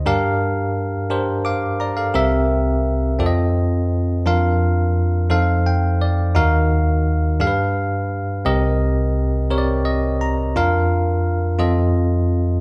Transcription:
<<
  \new Staff \with { instrumentName = "Tine electric piano" } { \time 6/8 \key bes \major \tempo 4. = 57 << { r2 <f'' d'''>8 <d'' bes''>16 <a' f''>16~ | <a' f''>16 r2 r8. | r2 g''8 d''8 | r2. |
r2 ees''8 bes''8 | r2. | } \\ { <d' g' bes' f''>4~ <d' g' bes' f''>16 r16 <d' g' bes' c''>4~ <d' g' bes' c''>16 r16 | <c' g' bes' e''>4~ <c' g' bes' e''>16 r16 <c' f' a' d'' ees''>4~ <c' f' a' d'' ees''>16 r16 | <d' f' bes' f''>4~ <d' f' bes' f''>16 r16 <ees' a' c'' f''>4~ <ees' a' c'' f''>16 r16 | <ees' ges' bes' f''>4~ <ees' ges' bes' f''>16 r16 <d' g' a' b' f''>4~ <d' g' a' b' f''>16 r16 |
<c' g' bes' ees''>4~ <c' g' bes' ees''>16 r16 <c' g' bes' des'' d''>4~ <c' g' bes' des'' d''>16 r16 | <d' f' bes' f''>4~ <d' f' bes' f''>16 r16 <c' f' a' ees''>4~ <c' f' a' ees''>16 r16 | } >> }
  \new Staff \with { instrumentName = "Tine electric piano" } { \clef bass \time 6/8 \key bes \major g,2. | <c, c>4. f,4. | f,4. f,4. | <ees, ees>4. g,4. |
<c, c>2. | f,4. f,4. | }
>>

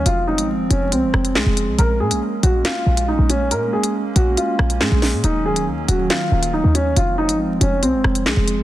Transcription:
<<
  \new Staff \with { instrumentName = "Upright piano" } { \time 4/4 \key bes \minor \tempo 4 = 139 f'8 ees'8 r8 des'8 c'4 aes4 | bes'8 aes'8 r8 ges'8 f'4 ees'8 des'8 | bes'8 aes'8 r8 ges'8 f'4 aes4 | ees'8 aes'8 r8 ges'8 f'4 ees'8 des'8 |
f'8 ees'8 r8 des'8 c'4 aes4 | }
  \new Staff \with { instrumentName = "Analog synth pad" } { \clef bass \time 4/4 \key bes \minor << { <f c'>1 | des'1~ | des'1 | <ees ges>1 |
<f c'>1 | } \\ { aes1 | bes1~ | bes1~ | bes1 |
aes1 | } >> }
  \new Staff \with { instrumentName = "808-style bass" } { \clef bass \time 4/4 \key bes \minor f,,8. aes,,16. f,,16. f,,8 c,16 f,,16 f,,8 c,16 f,,8 c,16 | bes,,8 bes,16 bes,,16 r8 bes,,8 r8 bes,,8. bes,,8. | bes,8 r4 bes,,8 r8 bes,,8 bes,16 bes,,8 bes,16 | ees,,4 ees,8 ees,,8 r8 ees,,8. ees,8. |
f,,8. aes,,16. f,,16. f,,8 c,16 f,,16 f,,8 c,16 f,,8 c,16 | }
  \new DrumStaff \with { instrumentName = "Drums" } \drummode { \time 4/4 hh8. hh16 r8 hh8 hh8 ss16 hh16 <hc sn>8 hh8 | hh8. hh16 r8 hh8 <hc hh sn>8. hh16 r8 hh8 | hh8. hh16 r8 hh8 hh8 ss16 hh16 <hc sn>8 <hho sn>8 | hh8. hh16 r8 hh8 <hc hh sn>8. hh16 r8 hh8 |
hh8. hh16 r8 hh8 hh8 ss16 hh16 <hc sn>8 hh8 | }
>>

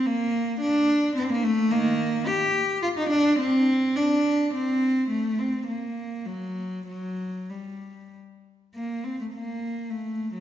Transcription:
\new Staff \with { instrumentName = "Cello" } { \time 3/4 \key bes \major \tempo 4 = 105 bes4 d'4 c'16 bes16 a8 | <ees bes>4 g'4 f'16 ees'16 d'8 | c'4 d'4 c'4 | a8 c'8 bes4 fis4 |
fis4 g4 r4 | bes8 c'16 a16 bes4 a8. fis16 | }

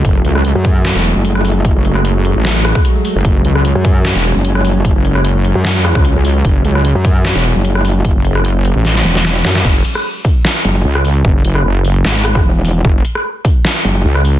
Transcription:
<<
  \new Staff \with { instrumentName = "Analog synth pad" } { \clef bass \time 4/4 \key fis \minor \tempo 4 = 150 << { a1~ | a1 | cis'1~ | cis'1~ |
cis'1~ | cis'1 | r1 | r1 |
r1 | } \\ { <fis gis>1~ | <fis gis>1~ | <fis gis>1~ | <fis gis>1~ |
<fis gis>1~ | <fis gis>1 | r1 | r1 |
r1 | } >> }
  \new Staff \with { instrumentName = "Wobble bass" } { \clef bass \time 4/4 \key fis \minor r4 r16 fis,4 r8 fis,,4~ fis,,16~ | fis,,16 r2. r8. | r4 r16 fis,4 r8 fis,,4~ fis,,16~ | fis,,16 r4. fis,4 cis,8 r8. |
r4 r16 fis,4 r8 fis,,4~ fis,,16~ | fis,,16 r2 r16 e,,4 fis,8 | r2 r8 fis,,8 r4 | r2 gis,,4 e,,4 |
r2 r8 fis,,8 r4 | }
  \new Staff \with { instrumentName = "Wobble bass" } { \clef bass \time 4/4 \key fis \minor fis,,8 cis,8. r4 e,,8 r4 r16 | r16 fis,,4. a,,4 r4 fis,,16 | fis,,8 cis,8. r4 e,,8 r4 r16 | r16 fis,,4. r4. cis,8. |
fis,,8 cis,8. r4 e,,8 r4 r16 | r16 fis,,4. a,,8. r4. | fis,,8 r2 r8 cis,4 | fis,,8 fis,,8 fis,,4 r2 |
fis,,8 r2 r8 cis,4 | }
  \new DrumStaff \with { instrumentName = "Drums" } \drummode { \time 4/4 <hh bd>8 hh16 ss16 hh8 <hh bd>8 <hh sn>8 hh8 hh16 ss16 hho8 | <hh bd>8 hh16 ss16 hh8 hh8 <hh sn>8 <hh ss>16 <bd ss>16 hh8 hho8 | <hh bd>8 hh16 ss16 hh8 <hh bd>8 <hh sn>8 hh8 hh16 ss16 hho8 | <hh bd>8 hh16 ss16 hh8 hh8 <hh sn>8 <hh ss>16 <bd ss>16 hh8 hho8 |
<hh bd>8 hh16 ss16 hh8 <hh bd>8 <hh sn>8 hh8 hh16 ss16 hho8 | <hh bd>8 hh16 ss16 hh8 hh8 <hh sn>16 sn16 hh16 sn16 <hh sn>8 <hho sn>16 sn16 | <cymc bd>8 hh16 ss16 r8 <hho bd>8 sn16 hh16 hh8 r16 ss16 hho8 | bd8 hh16 ss16 r8 hho8 sn16 hh16 <hh ss>16 <bd ss>16 r8 hho8 |
bd8 hh16 ss16 r8 <hho bd>8 sn16 hh16 hh8 r16 ss16 hho8 | }
>>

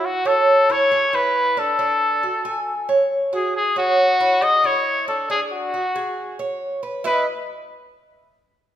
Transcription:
<<
  \new Staff \with { instrumentName = "Trumpet" } { \time 4/4 \key e \major \tempo 4 = 137 fis'8 a'4 cis''4 b'4 a'8~ | a'2~ a'8 r4 gis'8 | gis'8 fis'4. dis''8 cis''4 a'8 | gis'8 fis'2 r4. |
b'8 r2. r8 | }
  \new Staff \with { instrumentName = "Cuban tres" } { \time 4/4 \key e \major fis'8 cis'4 e'8 gis'8 e'4 d'8 | d'4 fis'8 gis''4 cis''4 fis'8~ | fis'8 cis'4 e'8 gis'8 e'4 d'8 | d'4 fis'8 gis'4 cis''4 b'8 |
<e' b' dis''>8 r2. r8 | }
>>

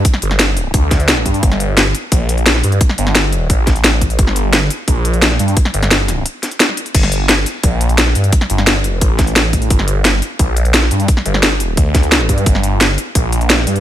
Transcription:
<<
  \new Staff \with { instrumentName = "Detuned saw bass" } { \clef bass \time 4/4 \key g \minor \tempo 4 = 174 r8 g,,4. d,4. g,8 | g,,4. r8 bes,,4. g,8 | r8 g,,4. a,,2 | g,,4. r8 bes,,4. g,8 |
r8 g,,4. r2 | g,,4. r8 bes,,4. g,8 | r8 g,,4. a,,2 | g,,4. r8 bes,,4. g,8 |
r8 g,,4. d,4. g,8 | g,,4. r8 bes,,4. g,8 | }
  \new DrumStaff \with { instrumentName = "Drums" } \drummode { \time 4/4 <hh bd>16 sn16 hh16 sn16 <hh sn>8 hh8 <hh bd>8 <hh bd sn>16 hh16 <hh sn>16 sn16 <hh bd>16 hh16 | <hh bd>16 sn16 hh8 <hh sn>8 hh8 <hh bd>8 hh16 hh16 <hh sn>16 sn16 hh16 hh16 | <hh bd>16 sn16 hh16 sn16 <hh sn>8 hh8 <hh bd>8 <hh bd sn>16 hh16 <hh sn>8 <hh bd>16 hh16 | <hh bd>16 sn16 hh8 <hh sn>8 hh8 <hh bd>8 hh16 hh16 <hh sn>16 sn16 hh16 hh16 |
<hh bd>16 sn16 hh16 <hh sn>16 <hh sn>8 <hh sn>8 hh8 <hh sn>16 hh16 <hh sn>16 sn16 hh16 hh16 | <cymc hh bd>16 sn16 hh8 <hh sn>8 hh8 <hh bd>8 hh16 hh16 <hh sn>16 sn16 hh16 hh16 | <hh bd>16 sn16 hh16 sn16 <hh sn>8 hh8 <hh bd>8 <hh bd sn>16 hh16 <hh sn>8 <hh bd>16 hh16 | <hh bd>16 sn16 hh8 <hh sn>8 hh8 <hh bd>8 hh16 hh16 <hh sn>16 sn16 hh16 hh16 |
<hh bd>16 sn16 hh16 sn16 <hh sn>8 hh8 <hh bd>8 <hh bd sn>16 hh16 <hh sn>16 sn16 <hh bd>16 hh16 | <hh bd>16 sn16 hh8 <hh sn>8 hh8 <hh bd>8 hh16 hh16 <hh sn>16 sn16 hh16 hh16 | }
>>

